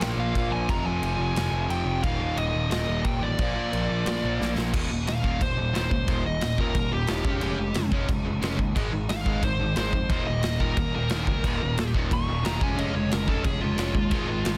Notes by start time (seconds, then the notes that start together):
Already playing: A#2 F3 A#3
0.00 A#1 A#2 F3 A#3 G5, snare, crash
0.17 A#1 F5
0.35 A#1, kick, crash
0.52 A#1 G#5
0.69 F1 F2 C3 F3 A#5, kick, crash
0.85 F2 G#5
1.02 F1, crash
1.18 F1
1.35 F1 F2 C3, snare, crash
1.40 F3
1.52 F1
1.69 F1 G5, crash
1.85 F1
2.03 D#1 D#2 A#2 D#3 F5, kick, crash
2.20 D#2
2.37 D#1 D#5, crash
2.54 D#1
2.70 D#1 D#2 A#2 D#5, snare, crash
2.75 D#3
2.88 D#1
3.04 D#1 G5, kick, crash
3.21 A1 D5
3.39 A#1 A#2 F3 A#3, kick, crash
3.55 A#2
3.73 A#1, crash
3.90 A#1
4.06 A#1 A#2 F3 A#3, snare, crash
4.24 A#1
4.40 A#1, snare
4.57 A#1, snare
4.72 D#1 D#2 A#2 D#3, kick, crash
4.91 D#1 D#2 A#2
5.07 D#1 D#2 A#2 F5, snare, crash
5.23 D#1 D#2 A#2 D#3, kick
5.41 D#1 D#2 A#2 C5, kick, crash
5.58 D#1 D#2 A#2
5.73 D#1 D#2 A#2 D#3 C5, snare, crash
5.91 C#2 D#2 A#2, kick
6.08 D#1 D#2 A#2 D#3, kick, crash
6.25 D#1 D#2 A#2 D#5
6.41 D#1 D#2 A#2, snare, crash
6.58 D#1 D#2 A#2 D#3 A#4, kick
6.75 D#1 D#2 A#2, kick, crash
6.92 D#1 D#2 A#2 G4
7.07 D#1 D#2 A#2 D#3, snare, crash
7.25 F1 C#3 G#3 C#4, kick
7.41 F1 C#3 G#3 C#4, crash
7.58 F1 C#3 G#3
7.74 F1 C#3 G#3, snare, crash
7.92 F1 C#3 G#3 C#4, kick
8.09 F1 C#3 G#3, kick, crash
8.25 F1 C#3 G#3
8.42 F1 C#3 G#3 C#4, snare, crash
8.58 D#2 C#3 G#3, kick
8.75 G#1 G#2 D#3 G#3, kick, crash
8.92 G#1 G#2 D#3
9.09 G#1 G#2 D#3 F5, snare, crash
9.25 G#1 G#2 D#3 G#3, kick
9.43 G#1 G#2 D#3 C5, kick, crash
9.60 G#1 G#2 D#3
9.76 G#1 G#2 D#3 G#3 C5, snare, crash
9.93 F2 G#2 D#3, kick
10.10 D#1 D#2 A#2 D#3, kick, crash
10.27 D#1 D#2 A#2 D#5
10.43 D#1 D#2 A#2, snare, crash
10.60 D#1 D#2 A#2 D#3 A#4, kick
10.77 D#1 D#2 A#2, kick, crash
10.93 D#1 D#2 A#2 D#3 A#4
11.10 D#1 D#2 A#2 D#3, snare, crash
11.27 C#2 D#2 A#2, kick
11.44 D#1 D#2 A#2 D#3, kick, crash
11.61 D#1 D#2 A#2
11.78 D#1 D#2 A#2, snare, crash
11.94 D#1 D#2 A#2 D#3, kick
12.11 D#1 D#2 A#2 C#6, kick, crash
12.28 D#1 D#2 A#2 D#3
12.45 E1 D#2 A#2 D#3 A#5, snare, crash
12.61 F1 C#3 G#3 C#4 G#5, kick
12.76 F1 C#3 G#3 C#4 D#5, crash
12.94 F1 C#3 G#3 C#5
13.10 F1 C#3 G#3 A#4, snare, crash
13.28 F1 C#3 G#3 C#4 A4, kick
13.44 F1 C#3 G#3 C#4 G#4, kick, crash
13.60 F1 C#3 G#3 C#4 F4
13.77 F1 C#3 G#3 C#4, snare, crash
13.93 D#2 C#3 G#3, kick
14.11 G#1 G#2 D#3 G#3, kick, crash
14.27 G#1 G#2 D#3
14.45 G#1 G#2 D#3, snare, crash